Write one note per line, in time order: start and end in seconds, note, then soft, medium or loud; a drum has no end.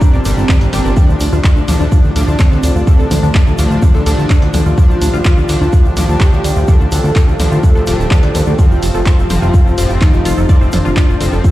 0.00 0.23 A#2 medium
0.00 0.96 F3 medium
0.00 0.23 G3 medium
0.00 0.98 C4 loud
0.00 0.23 D4 loud
0.00 0.13 D4 medium
0.00 0.96 F4 medium
0.00 0.93 G4 medium
0.00 11.51 G4 medium
0.00 8.55 D5 medium
0.00 0.93 A#5 loud
0.00 0.97 A#5 medium
0.00 kick loud
0.00 shaker medium
0.13 0.21 G1 medium
0.13 0.21 D5 loud
0.13 snare soft
0.13 shaker soft
0.25 0.33 G1 loud
0.25 0.70 A#2 medium
0.25 0.70 G3 medium
0.25 0.70 D4 medium
0.25 0.30 G4 medium
0.25 open hi-hat loud
0.25 shaker loud
0.25 shaker medium
0.37 0.45 G1 medium
0.37 snare medium
0.37 shaker soft
0.49 0.61 D5 medium
0.49 kick loud
0.49 snare loud
0.49 clap loud
0.49 mid tom loud
0.49 shaker medium
0.61 0.69 G1 medium
0.61 0.72 D4 medium
0.61 closed hi-hat soft
0.61 shaker soft
0.73 0.81 G1 loud
0.73 0.94 A#2 loud
0.73 0.94 G3 medium
0.73 0.94 D4 loud
0.73 0.84 G4 loud
0.73 open hi-hat loud
0.73 shaker medium
0.85 0.92 G1 medium
0.85 0.90 A#4 medium
0.85 snare soft
0.85 shaker soft
0.97 1.65 A2 medium
0.97 11.51 F3 medium
0.97 1.65 F3 medium
0.97 2.41 D4 loud
0.97 1.65 D4 medium
0.97 11.51 F4 medium
0.97 4.74 A5 medium
0.97 kick loud
0.97 mid tom medium
0.97 shaker medium
1.09 1.16 D2 medium
1.09 1.19 D4 medium
1.09 shaker soft
1.19 1.28 D2 loud
1.19 1.25 D4 medium
1.19 11.51 C5 medium
1.19 open hi-hat loud
1.19 shaker loud
1.19 shaker medium
1.32 1.40 D2 medium
1.32 1.37 F4 loud
1.32 snare soft
1.32 shaker soft
1.44 1.49 F4 medium
1.44 kick loud
1.44 snare loud
1.44 clap loud
1.44 shaker soft
1.44 shaker medium
1.52 11.51 F5 medium
1.56 1.64 D2 medium
1.56 1.64 D4 medium
1.56 shaker soft
1.68 1.76 D2 loud
1.68 2.13 A2 medium
1.68 2.13 F3 medium
1.68 2.13 D4 loud
1.68 open hi-hat loud
1.68 mid tom loud
1.68 shaker medium
1.74 11.51 A5 medium
1.80 1.88 D2 medium
1.80 1.85 D4 loud
1.80 shaker soft
1.92 2.00 F4 medium
1.92 kick loud
1.92 shaker soft
1.92 shaker medium
2.04 2.11 D2 medium
2.04 2.12 D4 medium
2.04 shaker soft
2.16 2.23 D2 loud
2.16 2.84 A2 loud
2.16 2.84 F3 medium
2.16 2.84 D4 loud
2.16 2.24 D4 medium
2.16 open hi-hat loud
2.16 shaker medium
2.28 2.35 D2 medium
2.28 shaker soft
2.39 3.02 C4 loud
2.39 2.47 D4 medium
2.39 kick loud
2.39 snare loud
2.39 clap loud
2.39 mid tom loud
2.39 shaker medium
2.52 2.59 D2 medium
2.52 2.59 D4 medium
2.52 snare soft
2.52 shaker soft
2.63 2.71 D2 loud
2.63 2.71 D4 loud
2.63 open hi-hat loud
2.63 shaker loud
2.63 shaker medium
2.75 2.83 D2 medium
2.75 2.83 F4 medium
2.75 shaker soft
2.87 3.56 A2 medium
2.87 3.56 F3 medium
2.87 3.56 D4 medium
2.87 2.98 A4 loud
2.87 kick loud
2.87 shaker medium
2.99 3.07 D2 medium
2.99 3.07 A4 loud
2.99 shaker soft
3.11 3.19 D2 loud
3.11 3.84 A3 loud
3.11 3.19 D4 medium
3.11 open hi-hat loud
3.11 mid tom loud
3.11 shaker medium
3.11 shaker loud
3.23 3.31 D2 medium
3.23 3.31 D4 loud
3.23 shaker soft
3.35 3.43 D4 medium
3.35 kick loud
3.35 snare loud
3.35 clap loud
3.35 shaker medium
3.47 3.54 D2 medium
3.47 3.55 D4 medium
3.47 shaker soft
3.58 3.66 D2 loud
3.58 4.04 A2 medium
3.58 4.03 F3 medium
3.58 4.04 D4 loud
3.58 open hi-hat loud
3.58 shaker loud
3.58 shaker medium
3.71 3.78 D2 medium
3.71 3.78 F4 medium
3.71 shaker soft
3.82 3.94 A3 medium
3.82 4.68 D4 loud
3.82 kick loud
3.82 mid tom medium
3.82 shaker medium
3.94 4.02 D2 medium
3.94 4.02 A4 loud
3.94 snare soft
3.94 shaker soft
4.06 4.14 D2 loud
4.06 4.75 A2 loud
4.06 4.75 F3 medium
4.06 4.75 D4 loud
4.06 4.18 A4 loud
4.06 open hi-hat loud
4.06 shaker medium
4.06 shaker loud
4.18 4.26 D2 medium
4.18 snare medium
4.18 shaker soft
4.30 4.38 D4 medium
4.30 kick loud
4.30 snare loud
4.30 clap loud
4.30 shaker medium
4.42 4.50 D2 medium
4.42 4.50 D4 medium
4.42 closed hi-hat soft
4.42 shaker soft
4.54 4.62 D2 loud
4.54 4.59 D4 medium
4.54 open hi-hat loud
4.54 mid tom loud
4.54 shaker medium
4.66 4.73 D2 medium
4.66 4.74 F4 medium
4.66 shaker soft
4.78 5.46 A2 medium
4.78 5.46 F3 medium
4.78 5.46 D4 medium
4.78 6.11 F4 loud
4.78 8.55 G5 loud
4.78 kick loud
4.78 shaker medium
4.90 4.97 D2 medium
4.90 5.00 D4 medium
4.90 shaker soft
5.02 5.09 D2 loud
5.02 5.06 D4 medium
5.02 open hi-hat loud
5.02 shaker medium
5.02 shaker loud
5.14 5.21 D2 medium
5.14 5.18 F4 loud
5.14 snare soft
5.14 shaker soft
5.24 5.30 F4 medium
5.24 kick loud
5.24 snare loud
5.24 clap loud
5.24 mid tom medium
5.24 shaker medium
5.37 5.45 D2 medium
5.37 5.45 D4 medium
5.37 shaker soft
5.49 5.57 D2 loud
5.49 5.94 A2 medium
5.49 5.94 F3 medium
5.49 5.94 D4 loud
5.49 open hi-hat loud
5.49 shaker medium
5.61 5.69 D2 medium
5.61 5.66 D4 loud
5.61 shaker soft
5.72 5.81 F4 medium
5.72 kick loud
5.72 shaker medium
5.85 5.92 D2 medium
5.85 5.93 D4 medium
5.85 shaker soft
5.97 6.04 D2 loud
5.97 6.65 A2 medium
5.97 6.65 F3 medium
5.97 6.05 D4 medium
5.97 6.65 D4 loud
5.97 open hi-hat loud
5.97 mid tom medium
5.97 shaker medium
6.09 6.16 D2 medium
6.09 shaker soft
6.20 6.28 D4 medium
6.20 6.83 G4 loud
6.20 kick loud
6.20 snare loud
6.20 clap loud
6.20 shaker medium
6.33 6.40 D2 medium
6.33 6.40 D4 medium
6.33 snare soft
6.33 shaker soft
6.44 6.52 D2 loud
6.44 6.52 D4 loud
6.44 open hi-hat loud
6.44 shaker medium
6.44 shaker loud
6.56 6.64 D2 medium
6.56 6.64 F4 medium
6.56 shaker soft
6.68 7.37 A2 medium
6.68 7.37 F3 medium
6.68 7.37 D4 medium
6.68 6.79 A4 loud
6.68 kick loud
6.68 mid tom medium
6.68 shaker medium
6.80 6.88 D2 medium
6.80 6.88 A4 loud
6.80 shaker soft
6.92 7.00 D2 loud
6.92 7.00 D4 medium
6.92 7.54 A4 loud
6.92 open hi-hat loud
6.92 shaker medium
7.04 7.12 D2 medium
7.04 7.12 D4 loud
7.04 shaker soft
7.16 7.24 D4 medium
7.16 kick loud
7.16 snare loud
7.16 clap loud
7.16 shaker medium
7.28 7.35 D2 medium
7.28 7.36 D4 medium
7.28 shaker soft
7.40 7.47 D2 loud
7.40 7.84 A2 medium
7.40 7.84 F3 medium
7.40 7.84 D4 loud
7.40 open hi-hat loud
7.40 mid tom medium
7.40 shaker medium
7.40 shaker loud
7.52 7.59 D2 medium
7.52 7.59 F4 medium
7.52 shaker soft
7.63 7.75 A3 medium
7.63 8.60 A4 loud
7.63 kick loud
7.63 shaker medium
7.75 7.83 D2 medium
7.75 7.83 A4 loud
7.75 snare soft
7.75 shaker soft
7.87 7.95 D1 medium
7.87 8.56 A2 loud
7.87 8.56 F3 medium
7.87 8.56 D4 loud
7.87 7.99 F4 medium
7.87 open hi-hat loud
7.87 shaker medium
7.99 8.07 D1 medium
7.99 snare medium
7.99 shaker soft
8.11 8.19 D4 medium
8.11 kick loud
8.11 snare loud
8.11 clap loud
8.11 mid tom medium
8.11 shaker medium
8.23 8.31 D2 medium
8.23 8.31 D4 loud
8.23 closed hi-hat soft
8.23 shaker soft
8.35 8.43 D#2 loud
8.35 8.46 C4 medium
8.35 open hi-hat loud
8.35 shaker medium
8.35 shaker loud
8.46 8.54 D2 medium
8.46 8.55 D4 loud
8.46 shaker soft
8.59 9.27 A2 medium
8.59 9.27 F3 medium
8.59 9.27 C4 medium
8.59 9.92 F4 loud
8.59 11.51 C5 medium
8.59 11.51 A5 medium
8.59 kick loud
8.59 mid tom medium
8.59 shaker medium
8.71 8.78 F1 medium
8.71 8.81 F4 medium
8.71 shaker soft
8.82 8.90 F1 loud
8.82 8.87 F4 medium
8.82 open hi-hat loud
8.82 shaker medium
8.94 9.02 F1 medium
8.94 8.99 A4 loud
8.94 snare soft
8.94 shaker soft
9.06 9.11 A4 medium
9.06 kick loud
9.06 snare loud
9.06 clap loud
9.06 shaker medium
9.18 9.26 F1 medium
9.18 9.26 F4 medium
9.18 shaker soft
9.30 9.38 F1 loud
9.30 9.75 A2 medium
9.30 9.75 F3 medium
9.30 9.75 C4 loud
9.30 open hi-hat loud
9.30 mid tom medium
9.30 shaker medium
9.42 9.50 F1 medium
9.42 9.47 F4 loud
9.42 shaker soft
9.54 9.62 A4 medium
9.54 kick loud
9.54 shaker medium
9.66 9.73 F1 medium
9.66 9.74 F4 medium
9.66 shaker soft
9.78 9.85 F1 loud
9.78 10.46 A2 loud
9.78 10.46 F3 medium
9.78 10.46 C4 loud
9.78 9.86 F4 medium
9.78 open hi-hat loud
9.78 shaker medium
9.78 shaker loud
9.90 9.97 F1 medium
9.90 shaker soft
10.02 10.64 D#4 loud
10.02 10.09 F4 medium
10.02 kick loud
10.02 snare loud
10.02 clap loud
10.02 mid tom medium
10.02 shaker medium
10.13 10.21 F1 medium
10.13 10.21 F4 medium
10.13 snare soft
10.13 shaker soft
10.25 10.33 F1 loud
10.25 10.33 F4 loud
10.25 open hi-hat loud
10.25 shaker medium
10.37 10.45 F1 medium
10.37 10.45 A4 medium
10.49 11.18 A2 medium
10.49 11.18 F3 medium
10.49 11.18 C4 medium
10.49 10.61 D5 loud
10.49 kick loud
10.49 shaker medium
10.49 shaker soft
10.61 10.69 F1 medium
10.61 10.69 C5 loud
10.61 shaker soft
10.72 10.81 F1 loud
10.72 11.35 D4 loud
10.72 10.81 F4 medium
10.72 open hi-hat loud
10.72 mid tom medium
10.72 shaker medium
10.85 10.92 F1 medium
10.85 10.93 F4 loud
10.85 shaker soft
10.97 11.05 F4 medium
10.97 kick loud
10.97 snare loud
10.97 clap loud
10.97 shaker medium
11.09 11.16 F1 medium
11.09 11.17 F4 medium
11.09 shaker soft
11.21 11.28 F1 loud
11.21 11.51 A2 medium
11.21 11.51 F3 medium
11.21 11.51 C4 loud
11.21 open hi-hat loud
11.21 shaker medium
11.32 11.40 F1 medium
11.32 11.40 A4 medium
11.32 shaker soft
11.44 11.51 C4 medium
11.44 11.51 F4 loud
11.44 kick loud
11.44 mid tom medium
11.44 shaker medium